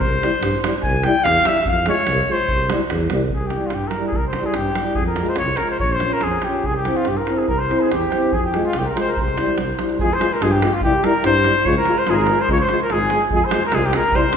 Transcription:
0.00 tuba C2, trumpet C5, davul low
0.22 euphonium G3 E4, davul high
0.42 tuba G2, davul high
0.55 davul high
0.64 euphonium G3 E4, davul high
0.73 davul high
0.83 tuba C2, trumpet G#5, davul low
1.03 euphonium G3 E4, trumpet G5, davul high
1.24 tuba E2, trumpet F5, davul high
1.36 davul high
1.45 euphonium G3 E4, trumpet E5, davul high
1.57 davul high
1.65 tuba F2, trumpet F5, davul low
1.86 euphonium G#3 F4, trumpet C#5, davul high
2.07 tuba C2, davul high
2.18 davul high
2.29 euphonium G#3 F4, trumpet C5
2.40 davul high
2.48 tuba C2, davul low
2.60 davul high
2.70 euphonium G3 E4, davul high
2.81 davul high
2.90 tuba E2, davul high
3.00 davul high
3.10 tuba C2, euphonium G3 E4, davul high
3.30 tuba C2, davul low
3.35 trumpet G#4
3.47 trumpet G4, davul high
3.55 euphonium G3 E4
3.61 davul high
3.66 trumpet F4, davul high
3.74 tuba G2, trumpet G4
3.87 trumpet A#4, davul high
3.97 euphonium G3 E4
4.07 trumpet G#4
4.12 trumpet A#4, davul low
4.16 tuba C2
4.27 trumpet C5
4.33 davul high
4.38 euphonium G3 E4
4.43 trumpet G#4, davul high
4.54 tuba G2, trumpet G4, davul high
4.75 euphonium G3, davul high
4.81 euphonium E4
4.95 trumpet G#4, davul low
5.00 tuba F2
5.06 trumpet A#4
5.16 davul high
5.21 euphonium G#3 F4
5.26 trumpet C5, davul high
5.36 trumpet C#5, davul high
5.42 tuba C2
5.56 trumpet A#4, davul high
5.62 euphonium G#3 F4
5.70 trumpet C5
5.80 tuba A#1, trumpet C#5, flugelhorn C#5, davul low
5.91 flugelhorn C5, trumpet C5, davul high
6.00 euphonium F4, davul high
6.05 euphonium C#4
6.11 trumpet A#4, flugelhorn A#4, davul high
6.21 tuba F2, trumpet G#4, flugelhorn G#4, davul high
6.42 euphonium F4, trumpet G4, flugelhorn G4, davul high
6.46 euphonium C#4
6.54 davul high
6.64 tuba C2, trumpet G#4, flugelhorn G#4, davul low
6.76 flugelhorn G4, trumpet G4
6.85 euphonium C4 E4, davul high
6.96 trumpet F4, flugelhorn F4, davul high
7.05 tuba G2, flugelhorn G4, trumpet G4, davul high
7.17 trumpet A#4, flugelhorn A#4
7.27 euphonium C4 E4, davul high
7.38 trumpet G#4, flugelhorn G#4
7.47 tuba C2, flugelhorn A#4, trumpet A#4, davul low
7.58 flugelhorn C5, trumpet C5
7.70 euphonium C4 E4, davul high
7.80 flugelhorn G#4, trumpet G#4, davul high
7.91 tuba E2, flugelhorn G4, trumpet G4, davul high
8.11 euphonium C4 E4, davul high
8.31 tuba F2, flugelhorn G#4, trumpet G#4, davul low
8.43 flugelhorn G4, trumpet G4
8.53 euphonium G#3 F4, davul high
8.64 flugelhorn F4, trumpet F4, davul high
8.73 tuba C2, flugelhorn G4, davul high
8.78 trumpet G4
8.85 flugelhorn A#4, trumpet A#4
8.95 euphonium G#3 F4, flugelhorn C5, davul high
8.99 trumpet C5
9.07 flugelhorn A#4 C5, trumpet A#4
9.12 flugelhorn A#4, trumpet A#4 C5
9.17 tuba C2, flugelhorn C5, trumpet C5, davul low
9.28 davul high
9.37 euphonium G3 E4, davul high
9.46 davul high
9.58 tuba C2, davul high
9.69 davul high
9.79 euphonium G3 E4, davul high
9.90 davul high
9.99 tuba F2, euphonium G#3 F4, flugelhorn G#4, trumpet G#4, davul low
10.13 flugelhorn C5, trumpet C5
10.20 euphonium G#3 F4, davul high
10.33 trumpet A#4, flugelhorn A#4
10.42 tuba G2, euphonium G#3 F4, trumpet G#4, flugelhorn G#4, davul high
10.51 trumpet G4, flugelhorn G4
10.62 euphonium G#3 F4, davul high
10.73 trumpet F4, flugelhorn F4
10.81 tuba C2, euphonium G3 E4, flugelhorn G4, trumpet G4, davul low
11.04 euphonium G3 E4, trumpet A#4, flugelhorn A#4, davul high
11.24 tuba G2, euphonium G3 E4, trumpet C5, flugelhorn C5, davul high
11.44 euphonium G3 E4, davul high
11.65 tuba C#2, euphonium G#3 F4, trumpet C#5, flugelhorn C#5, davul low
11.77 trumpet A#4, flugelhorn A#4
11.85 euphonium G#3 F4, davul high
11.98 trumpet C5, flugelhorn C5
12.07 tuba G#1, euphonium G#3 F4, trumpet G#4, flugelhorn G#4, davul high
12.13 flugelhorn G#4 A#4, trumpet G#4 A#4
12.19 trumpet A#4, flugelhorn A#4
12.26 euphonium G#3, davul high
12.31 euphonium F4
12.41 trumpet C5, flugelhorn C5
12.49 tuba C#2, euphonium G#3 F4, trumpet C#5, flugelhorn C#5, davul low
12.59 trumpet C5, davul high
12.65 flugelhorn C5, davul high
12.71 euphonium G#3 F4
12.81 trumpet A#4, flugelhorn A#4, davul high
12.90 tuba G#1, euphonium G#3 F4, trumpet G#4, davul high
12.94 flugelhorn G#4
13.01 davul high
13.10 euphonium G#3 F4, davul high
13.22 davul high
13.31 tuba F2, euphonium G#3 F4, davul low
13.35 trumpet G#4, flugelhorn G#4
13.44 flugelhorn C5, trumpet C5
13.51 euphonium G#3 F4, davul high
13.66 flugelhorn A#4, trumpet A#4
13.72 tuba C2, euphonium G#3 F4, trumpet G#4, flugelhorn G#4, davul high
13.86 trumpet G4, flugelhorn G4
13.93 euphonium G#3 F4, trumpet A#4, flugelhorn A#4, davul high
14.12 tuba C2, euphonium G3, flugelhorn C5, trumpet C5, davul low
14.17 euphonium E4
14.33 davul high

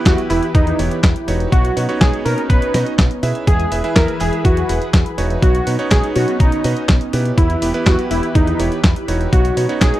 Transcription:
Already playing: analog synth pad E3 E4 G4 B4, electric grand piano B3 E4 G4 B4
0.06 fingered electric bass E2, analog synth lead F#4, kick, snare, clap, closed hi-hat
0.18 closed hi-hat
0.30 fingered electric bass E1, electric grand piano B3 E4 G4 B4, analog synth lead E4, clap, open hi-hat
0.43 closed hi-hat
0.55 fingered electric bass E2, analog synth lead D#4, kick, closed hi-hat
0.67 closed hi-hat
0.79 fingered electric bass E1, electric grand piano B3 E4 G4 C#5, open hi-hat
0.91 closed hi-hat
1.03 fingered electric bass E2, kick, snare, clap, closed hi-hat
1.16 closed hi-hat
1.28 fingered electric bass E1, electric grand piano D#4 F#4 B4 C#5, open hi-hat
1.40 closed hi-hat
1.52 fingered electric bass B1, analog synth pad B3 C#4 D#4, analog synth lead F#4, kick, closed hi-hat
1.65 closed hi-hat
1.77 fingered electric bass B2, electric grand piano D#4 F#4 B4 C#5, open hi-hat
1.89 electric grand piano D#4 F#4 B4 C#5, closed hi-hat
2.01 fingered electric bass B1, analog synth lead G#4, kick, snare, clap, closed hi-hat
2.13 closed hi-hat
2.25 fingered electric bass B2, electric grand piano D#4 F#4 B4 C#5, analog synth lead A#4, open hi-hat
2.38 closed hi-hat
2.49 fingered electric bass B1, analog synth lead B4, kick, closed hi-hat
2.62 closed hi-hat
2.74 fingered electric bass B2, electric grand piano D#4 F#4 B4 D#5, snare, open hi-hat
2.86 closed hi-hat
2.99 fingered electric bass B1, kick, snare, clap, closed hi-hat
3.11 closed hi-hat
3.23 fingered electric bass B2, electric grand piano E4 G#4 B4 E5, open hi-hat
3.35 closed hi-hat
3.47 fingered electric bass E2, analog synth pad E3 E4 G#4 B4, analog synth lead G#4, kick, closed hi-hat
3.60 closed hi-hat
3.72 fingered electric bass E1, electric grand piano E4 G#4 B4 E5, open hi-hat
3.84 electric grand piano E4 G#4 B4 E5, closed hi-hat
3.96 fingered electric bass E2, analog synth lead A#4, kick, snare, clap, closed hi-hat
4.08 closed hi-hat
4.20 fingered electric bass E1, electric grand piano E4 G#4 B4 E5, analog synth lead G#4, clap, open hi-hat
4.33 closed hi-hat
4.45 fingered electric bass E2, analog synth lead F#4, kick, closed hi-hat
4.57 closed hi-hat
4.69 fingered electric bass E1, electric grand piano E4 G#4 B4 F#5, open hi-hat
4.82 closed hi-hat
4.94 fingered electric bass E2, kick, snare, clap, closed hi-hat
5.06 closed hi-hat
5.18 fingered electric bass E1, electric grand piano D#4 F#4 B4 C#5, open hi-hat
5.30 closed hi-hat
5.42 fingered electric bass B1, analog synth pad B3 C#4 D#4, analog synth lead F#4, kick, closed hi-hat
5.55 closed hi-hat
5.67 fingered electric bass B2, electric grand piano D#4 F#4 B4 C#5, open hi-hat
5.79 electric grand piano D#4 F#4 B4 C#5, closed hi-hat
5.91 fingered electric bass B1, analog synth lead G#4, kick, snare, clap, closed hi-hat
6.04 closed hi-hat
6.15 fingered electric bass B2, electric grand piano D#4 F#4 B4 C#5, analog synth lead F#4, open hi-hat
6.28 closed hi-hat
6.40 fingered electric bass B1, analog synth lead D#4, kick, closed hi-hat
6.52 closed hi-hat
6.64 fingered electric bass B2, electric grand piano D#4 F#4 B4 D#5, open hi-hat
6.77 closed hi-hat
6.89 fingered electric bass B1, kick, snare, clap, closed hi-hat
7.01 closed hi-hat
7.13 fingered electric bass B2, electric grand piano B3 E4 G4 B4, open hi-hat
7.25 closed hi-hat
7.37 fingered electric bass E2, analog synth pad E3 E4 G4 B4, analog synth lead E4, kick, closed hi-hat
7.50 closed hi-hat
7.62 fingered electric bass E1, electric grand piano B3 E4 G4 B4, open hi-hat
7.74 electric grand piano B3 E4 G4 B4, closed hi-hat
7.86 fingered electric bass E2, analog synth lead F#4, kick, snare, clap, closed hi-hat
7.99 closed hi-hat
8.11 fingered electric bass E1, electric grand piano B3 E4 G4 B4, analog synth lead E4, open hi-hat
8.23 closed hi-hat
8.35 fingered electric bass E2, analog synth lead D#4, kick, closed hi-hat
8.47 closed hi-hat
8.59 fingered electric bass E1, electric grand piano B3 E4 G4 C#5, open hi-hat
8.72 closed hi-hat
8.84 fingered electric bass E2, kick, snare, clap, closed hi-hat
8.96 closed hi-hat
9.08 fingered electric bass E1, electric grand piano D#4 F#4 B4 C#5, open hi-hat
9.21 closed hi-hat
9.33 fingered electric bass B1, analog synth pad B3 C#4 D#4, analog synth lead F#4, kick, closed hi-hat
9.45 closed hi-hat
9.57 fingered electric bass B2, electric grand piano D#4 F#4 B4 C#5, open hi-hat
9.69 electric grand piano D#4 F#4 B4 C#5, closed hi-hat
9.81 fingered electric bass B1, analog synth lead G#4, kick, snare, clap, closed hi-hat
9.94 closed hi-hat

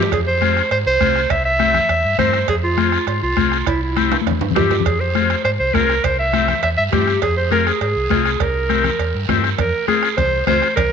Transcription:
Already playing: clarinet G4
0.02 low timbale
0.12 fingered electric bass F2, clarinet G#4, bombo low, bombo rim, cowbell, high conga, long guiro
0.27 clarinet C5
0.41 transistor combo organ C4 F4 G#4, bombo rim, high conga, short guiro
0.57 bombo rim, short guiro
0.71 fingered electric bass G#2, clarinet C5, bombo rim, cowbell, high conga, long guiro
0.86 fingered electric bass C2, clarinet C5
1.00 fingered electric bass C2, transistor combo organ C4 F4 G#4, bombo low, bombo rim, high conga, short guiro
1.16 bombo rim, short guiro
1.30 fingered electric bass C2, clarinet E5, bombo low, bombo rim, cowbell, high conga, long guiro
1.45 clarinet E5
1.59 transistor combo organ C4 E4 G4, bombo rim, high conga, short guiro
1.74 bombo rim, low conga, short guiro
1.89 fingered electric bass E2, bombo rim, cowbell, high conga, long guiro
2.04 fingered electric bass G2
2.18 fingered electric bass G2, transistor combo organ C4 E4 A#4, clarinet C5, bombo low, bombo rim, high conga, low conga, short guiro
2.33 bombo rim, short guiro
2.48 fingered electric bass F2, clarinet G#4, bombo low, bombo rim, cowbell, high conga, long guiro
2.64 clarinet F4
2.78 transistor combo organ C4 F4 G#4, bombo rim, high conga, short guiro
2.92 bombo rim, short guiro
3.07 fingered electric bass G#2, clarinet F4, bombo rim, cowbell, high conga, long guiro
3.22 fingered electric bass C2, clarinet F4
3.36 fingered electric bass C2, transistor combo organ C4 F4 G#4, bombo low, bombo rim, high conga, short guiro
3.52 bombo rim, short guiro
3.67 fingered electric bass C2, clarinet E4, bombo low, bombo rim, cowbell, long guiro
3.83 clarinet E4
3.96 transistor combo organ C4 E4 G4, bombo rim, high conga, short guiro
4.11 bombo rim, high conga, high timbale, short guiro
4.21 high conga
4.26 fingered electric bass E2, bombo rim, cowbell, high timbale, long guiro
4.31 low conga
4.41 fingered electric bass G2, low conga, high timbale
4.51 low conga
4.55 fingered electric bass G2, transistor combo organ C4 E4 G4, clarinet G4, bombo low, bombo rim, low timbale, short guiro
4.60 low conga
4.70 bombo rim, low conga, low timbale, short guiro
4.80 low conga
4.85 fingered electric bass F2, clarinet G#4, bombo low, bombo rim, cowbell, long guiro
5.00 clarinet C5
5.15 transistor combo organ C4 F4 G#4, bombo rim, high conga, short guiro
5.30 bombo rim, short guiro
5.44 fingered electric bass G#2, clarinet C5, bombo rim, cowbell, high conga, long guiro
5.59 fingered electric bass C2, clarinet C5
5.74 fingered electric bass C2, transistor combo organ C4 F4 G#4, clarinet A#4, bombo low, bombo rim, high conga, low timbale, short guiro
5.89 bombo rim, short guiro
6.04 fingered electric bass C2, clarinet C5, bombo low, bombo rim, cowbell, high conga, long guiro
6.19 clarinet E5
6.33 transistor combo organ C4 E4 G4, bombo rim, high conga, short guiro
6.48 bombo rim, low conga, short guiro
6.63 fingered electric bass E2, clarinet E5, bombo rim, cowbell, high conga, long guiro
6.77 fingered electric bass G2, clarinet E5
6.92 fingered electric bass G2, transistor combo organ C4 E4 G4, clarinet G4, bombo low, bombo rim, high conga, low conga, low timbale, short guiro
7.07 bombo rim, short guiro
7.22 fingered electric bass F2, clarinet G#4, bombo low, bombo rim, cowbell, long guiro
7.37 clarinet C5
7.51 transistor combo organ C4 F4 G#4, clarinet A#4, bombo rim, high conga, short guiro
7.67 clarinet G#4, bombo rim, short guiro
7.81 fingered electric bass G#2, clarinet G#4, bombo rim, cowbell, high conga, long guiro
7.96 fingered electric bass C2
8.10 fingered electric bass C2, transistor combo organ C4 F4 G#4, bombo low, bombo rim, high conga, low timbale, short guiro
8.25 bombo rim, short guiro
8.40 fingered electric bass C2, clarinet A#4, bombo low, bombo rim, cowbell, high conga, long guiro
8.69 transistor combo organ C4 E4 G4, bombo rim, high conga, short guiro
8.84 bombo rim, low conga, short guiro
8.99 fingered electric bass E2, bombo rim, cowbell, high conga, long guiro
9.14 fingered electric bass G2
9.28 fingered electric bass G2, transistor combo organ C4 E4 G4, bombo low, bombo rim, high conga, low conga, low timbale, short guiro
9.44 bombo rim, short guiro
9.58 fingered electric bass F2, clarinet A#4, bombo low, bombo rim, cowbell, high conga, low conga, long guiro
9.88 transistor combo organ C4 F4 G#4, clarinet G#4, bombo rim, high conga, short guiro
10.03 bombo rim, short guiro
10.17 fingered electric bass C2, clarinet C5, bombo low, bombo rim, cowbell, high conga, low conga, long guiro
10.47 fingered electric bass C#2, transistor combo organ C4 F4 G#4, clarinet C5, bombo rim, high conga, low conga, low timbale, short guiro
10.62 bombo rim, short guiro
10.76 fingered electric bass C2, clarinet A#4, bombo low, bombo rim, cowbell, high conga, low conga, long guiro

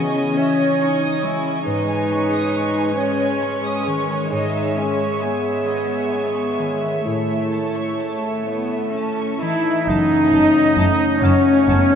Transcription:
Already playing: harp C#3 E3 C#4 C#5, cello section B3, viola section C#4, clarinet G#4, violin section D#5 G#5 C#6
0.15 violin section G#5
0.36 cello section C#4, clarinet C#5, violin section E5
0.60 violin section G#5
0.80 harp C#4, cello section D#4, violin section C#6
1.03 violin section D#6
1.23 harp G#3, cello section E4, violin section C#6
1.47 violin section G#5
1.66 harp G#2, viola section G#3, cello section D#4, clarinet B4, violin section C#5 D#5
1.91 violin section G#5
2.10 harp C#4, violin section C#6
2.35 violin section D#6
2.56 violin section C#6
2.79 violin section G#5
2.98 cello section C#4, clarinet C#5, violin section D#5
3.22 violin section G#5
3.42 harp C#4, violin section C#6
3.66 violin section D#6
3.87 harp D#3, violin section C#6
4.10 violin section G#5
4.31 harp G#2, cello section D#4, clarinet G#4, violin section D#5 E5
4.55 violin section E5
4.76 harp C#4, cello section C#4, violin section G#5
4.99 violin section C#6
5.20 cello section B3, harp G#4, violin section G#5
5.43 violin section E5
5.66 violin section D#5, harp E5
5.89 violin section E5
6.10 harp C#4, violin section G#5
6.35 violin section C#6
6.59 harp D#3, violin section G#5
6.82 violin section E5
7.05 harp A2, viola section A3, cello section A3, clarinet E4, violin section C#5
7.30 violin section E5
7.53 harp C#4, violin section A5
7.76 violin section C#6
8.00 violin section A5
8.25 violin section E5
8.46 cello section B3, harp C#5, violin section C#5
8.71 violin section E5
8.94 cello section C#4, harp C#4, violin section A5
9.19 violin section C#6
9.41 harp E3, cello section D#4, viola section E4, oboe E4, violin section E5 A5, flute section E5
9.65 violin section E5
9.87 double bass section F#1, cello section F#2, harp F#2, french horn section A3 C#4, oboe D#4, viola section D#4, flute section D#5, violin section D#5 A5
10.10 harp C#3
10.32 double bass section F#1, cello section F#2, harp C#4, violin section A5
10.55 harp F#4
10.77 double bass section F#1, cello section F#2, harp A3, violin section A5
11.00 harp C#5
11.22 double bass section F#1, cello section F#2, clarinet A3, viola section C#4, oboe C#4, violin section C#5 A5, flute section C#5, harp F#5
11.67 double bass section F#1, cello section F#2, clarinet B3, harp F#5, violin section A5
11.92 harp C#5

